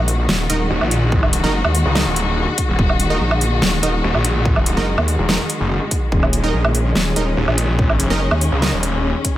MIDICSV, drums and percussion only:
0, 0, Header, 1, 2, 480
1, 0, Start_track
1, 0, Key_signature, -6, "minor"
1, 0, Tempo, 416667
1, 1291, Time_signature, 4, 2, 24, 8
1, 10803, End_track
2, 0, Start_track
2, 0, Title_t, "Drums"
2, 91, Note_on_c, 9, 46, 98
2, 207, Note_off_c, 9, 46, 0
2, 332, Note_on_c, 9, 38, 121
2, 447, Note_off_c, 9, 38, 0
2, 572, Note_on_c, 9, 42, 86
2, 688, Note_off_c, 9, 42, 0
2, 936, Note_on_c, 9, 77, 52
2, 1051, Note_off_c, 9, 77, 0
2, 1052, Note_on_c, 9, 42, 83
2, 1167, Note_off_c, 9, 42, 0
2, 1292, Note_on_c, 9, 36, 124
2, 1407, Note_off_c, 9, 36, 0
2, 1416, Note_on_c, 9, 77, 52
2, 1531, Note_off_c, 9, 77, 0
2, 1532, Note_on_c, 9, 42, 87
2, 1647, Note_off_c, 9, 42, 0
2, 1656, Note_on_c, 9, 38, 39
2, 1771, Note_off_c, 9, 38, 0
2, 1895, Note_on_c, 9, 77, 78
2, 2011, Note_off_c, 9, 77, 0
2, 2012, Note_on_c, 9, 46, 92
2, 2127, Note_off_c, 9, 46, 0
2, 2251, Note_on_c, 9, 38, 123
2, 2367, Note_off_c, 9, 38, 0
2, 2492, Note_on_c, 9, 42, 81
2, 2607, Note_off_c, 9, 42, 0
2, 2971, Note_on_c, 9, 36, 62
2, 2971, Note_on_c, 9, 42, 86
2, 3086, Note_off_c, 9, 42, 0
2, 3087, Note_off_c, 9, 36, 0
2, 3211, Note_on_c, 9, 36, 127
2, 3327, Note_off_c, 9, 36, 0
2, 3335, Note_on_c, 9, 77, 54
2, 3450, Note_off_c, 9, 77, 0
2, 3451, Note_on_c, 9, 42, 83
2, 3566, Note_off_c, 9, 42, 0
2, 3815, Note_on_c, 9, 77, 76
2, 3930, Note_off_c, 9, 77, 0
2, 3931, Note_on_c, 9, 46, 93
2, 4046, Note_off_c, 9, 46, 0
2, 4170, Note_on_c, 9, 38, 124
2, 4285, Note_off_c, 9, 38, 0
2, 4411, Note_on_c, 9, 42, 83
2, 4527, Note_off_c, 9, 42, 0
2, 4775, Note_on_c, 9, 77, 49
2, 4890, Note_off_c, 9, 77, 0
2, 4891, Note_on_c, 9, 42, 83
2, 5006, Note_off_c, 9, 42, 0
2, 5131, Note_on_c, 9, 36, 127
2, 5246, Note_off_c, 9, 36, 0
2, 5255, Note_on_c, 9, 77, 55
2, 5370, Note_off_c, 9, 77, 0
2, 5371, Note_on_c, 9, 42, 82
2, 5486, Note_off_c, 9, 42, 0
2, 5495, Note_on_c, 9, 38, 38
2, 5610, Note_off_c, 9, 38, 0
2, 5735, Note_on_c, 9, 77, 80
2, 5851, Note_off_c, 9, 77, 0
2, 5851, Note_on_c, 9, 46, 87
2, 5966, Note_off_c, 9, 46, 0
2, 6092, Note_on_c, 9, 38, 126
2, 6207, Note_off_c, 9, 38, 0
2, 6332, Note_on_c, 9, 42, 81
2, 6447, Note_off_c, 9, 42, 0
2, 6811, Note_on_c, 9, 36, 62
2, 6811, Note_on_c, 9, 42, 82
2, 6926, Note_off_c, 9, 36, 0
2, 6926, Note_off_c, 9, 42, 0
2, 7051, Note_on_c, 9, 36, 125
2, 7166, Note_off_c, 9, 36, 0
2, 7175, Note_on_c, 9, 77, 58
2, 7291, Note_off_c, 9, 77, 0
2, 7292, Note_on_c, 9, 42, 79
2, 7407, Note_off_c, 9, 42, 0
2, 7655, Note_on_c, 9, 77, 83
2, 7771, Note_off_c, 9, 77, 0
2, 7771, Note_on_c, 9, 46, 89
2, 7887, Note_off_c, 9, 46, 0
2, 8011, Note_on_c, 9, 38, 116
2, 8126, Note_off_c, 9, 38, 0
2, 8251, Note_on_c, 9, 42, 75
2, 8366, Note_off_c, 9, 42, 0
2, 8615, Note_on_c, 9, 77, 56
2, 8730, Note_off_c, 9, 77, 0
2, 8731, Note_on_c, 9, 42, 77
2, 8846, Note_off_c, 9, 42, 0
2, 8972, Note_on_c, 9, 36, 119
2, 9087, Note_off_c, 9, 36, 0
2, 9095, Note_on_c, 9, 77, 59
2, 9210, Note_off_c, 9, 77, 0
2, 9211, Note_on_c, 9, 42, 80
2, 9327, Note_off_c, 9, 42, 0
2, 9336, Note_on_c, 9, 38, 34
2, 9451, Note_off_c, 9, 38, 0
2, 9576, Note_on_c, 9, 77, 81
2, 9691, Note_off_c, 9, 77, 0
2, 9692, Note_on_c, 9, 46, 91
2, 9807, Note_off_c, 9, 46, 0
2, 9931, Note_on_c, 9, 38, 116
2, 10047, Note_off_c, 9, 38, 0
2, 10172, Note_on_c, 9, 42, 76
2, 10287, Note_off_c, 9, 42, 0
2, 10651, Note_on_c, 9, 36, 58
2, 10652, Note_on_c, 9, 42, 81
2, 10766, Note_off_c, 9, 36, 0
2, 10767, Note_off_c, 9, 42, 0
2, 10803, End_track
0, 0, End_of_file